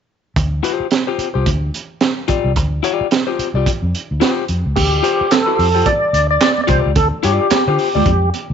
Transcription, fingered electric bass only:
0.36 D2
0.80 muted fingered electric bass stroke
1.18 muted fingered electric bass stroke
1.35 C2
1.46 D2
2.29 muted fingered electric bass stroke
2.44 C2
2.57 D2
3.01 muted fingered electric bass stroke
3.39 muted fingered electric bass stroke
3.54 C2
3.66 muted fingered electric bass stroke
3.82 F2
4.11 D2
4.49 F2
4.66 C#2
4.76 D2
5.21 muted fingered electric bass stroke
5.59 F2
6.13 D2
6.69 C2
6.86 C#2
6.96 D2
7.24 G2
7.52 muted fingered electric bass stroke
7.67 D3
7.95 D2
8.06 F2
8.50 D2

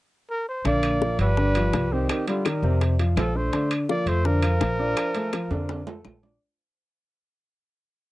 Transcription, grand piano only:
0.65 D3 D4
1.02 F3 F4
1.37 D3 D4
1.56 F3 F4
1.92 C4 C5
2.27 G3 G4
2.46 D#3 D#4
2.63 C3 C4
2.99 F3 F4
3.35 D4 D5
3.53 D3 D4
3.89 F3 F4
4.24 D3 D4
4.43 F3 F4
4.79 D4 D5
5.15 A3 A4
5.33 F3 F4
5.51 D3 D4
5.87 A3 A4
6.23 D4 D5

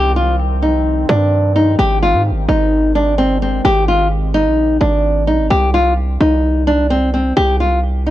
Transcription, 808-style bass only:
Already playing: C2
1.09 G2
1.79 G#1
2.14 G#2
2.31 G#1
2.49 G#1
3.65 G#1
4.46 A#1
4.81 G#1
5.28 A#1
5.39 G#1
5.51 C2
6.21 C2
7.37 C2

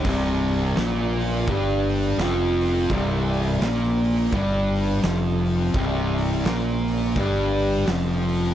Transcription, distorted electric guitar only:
0.05 C2 C3
0.77 A#2 A#3
1.49 G2 G3
2.20 F2 F3
2.91 C2 C3
3.62 A#2 A#3
4.34 G2 G3
5.04 F2 F3
5.75 C2 C3
6.46 A#2 A#3
7.17 G2 G3
7.88 F2 F3

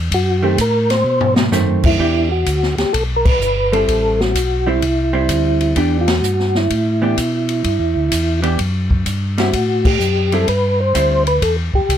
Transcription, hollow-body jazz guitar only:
0.42 D#3 A3 C4
1.52 D#3 A3 C4
1.99 E3 B3 D4 G4
3.72 G3 C4 E4
4.67 G3 C4 E4
5.13 G3 C4 E4
5.76 E3 B3 D4 G4
7.02 E3 B3 D4 G4
8.42 E3 B3 D4 G4
9.38 G3 C4 E4
10.32 G3 C4 E4
10.95 G3 C4 E4

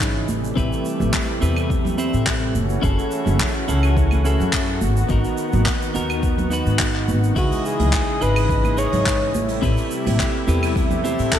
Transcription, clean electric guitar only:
Already playing: D#4 E4 G#4 C#5
0.56 C4 E4 G4 B4
1.41 C4 E4 G4 B4
1.98 C4 E4 G4 C5
2.82 C#4 E4 G#4 A4
3.68 C#4 E4 G#4 A4
4.24 C#4 E4 G#4 A4
5.09 B3 D#4 F#4 A#4
5.94 B3 D#4 F#4 A#4
6.50 B3 D#4 F#4 B4
7.35 D#4 E4 G#4 B4
8.21 D#4 E4 G#4 B4
8.77 D#4 E4 G#4 C#5
9.62 C4 E4 G4 B4
10.47 C4 E4 G4 B4
11.04 C4 E4 G4 C5

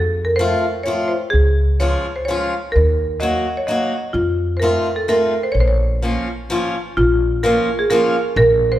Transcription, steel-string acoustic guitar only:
0.39 F3 A3 C4 F4
0.86 F3 A3 C4 F4
1.80 F3 G#3 C#4 F4
2.28 F3 G#3 C#4 F4
3.20 F#3 A#3 D#4 F#4
3.68 F#3 A#3 D#4 F#4
4.62 A3 C4 D#4 F4
5.08 A3 C4 D#4 F4
6.02 F3 A#3 C#4 F4
6.50 F3 A#3 C#4 F4
7.44 F3 A#3 C#4 F4
7.90 F3 A#3 C#4 F4

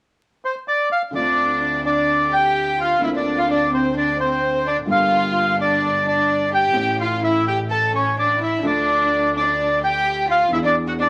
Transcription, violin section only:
1.14 D4
1.85 D4
2.32 G4
2.80 F4
3.03 E4
3.15 D4
3.38 F4
3.49 D4
3.72 C4
3.96 D4
4.19 C4
4.66 D4
4.90 F4
5.61 D4
6.06 D4
6.54 G4
7.01 F4
7.24 E4
7.47 G4
7.70 A4
7.94 C#4
8.18 D4
8.40 E4
8.64 D4
9.36 D4
9.84 G4
10.30 F4
10.53 E4
10.64 D4
10.87 F#4
11.00 D4

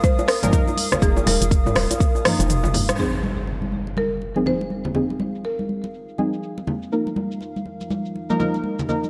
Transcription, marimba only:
0.04 C5
0.28 A#4
1.03 G#4
1.27 A#4
3.00 G#4
3.98 A#4
4.47 C5
5.45 A#4

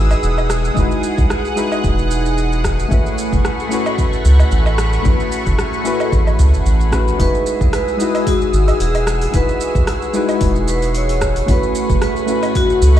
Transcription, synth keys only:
Already playing: G#3 D#4 E4 F#4 B4
0.74 G#3 D#4 E4
0.78 F#4 B4
1.56 G#3 D#4 E4 F#4 B4
2.88 A3 C#4 E4 F#4
2.94 B4
3.69 A3 C#4 E4
3.73 F#4 B4
5.02 A3 C#4 E4
5.07 F#4 B4
5.84 A3 C#4 E4 F#4 B4
6.92 A3 C#4 E4 F#4 B4
7.17 G#3 D#4 E4 F#4
7.23 B4
7.97 G#3 D#4 E4
8.02 F#4 B4
9.31 G#3 D#4 E4 F#4
9.37 B4
10.13 G#3 D#4 E4 F#4 B4
11.46 A3 C#4 E4
11.50 F#4 B4
12.26 A3 C#4 E4
12.30 F#4 B4

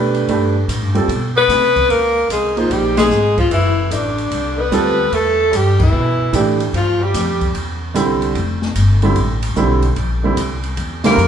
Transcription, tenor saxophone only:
1.36 B3
1.90 A#3
2.30 G#3
2.57 F3
2.70 G3
2.97 G#3
3.38 F3
3.51 E3
3.91 D3
4.58 B3
5.13 A3
5.53 G3
5.79 E3
6.75 F3
7.01 G3
11.05 A#3

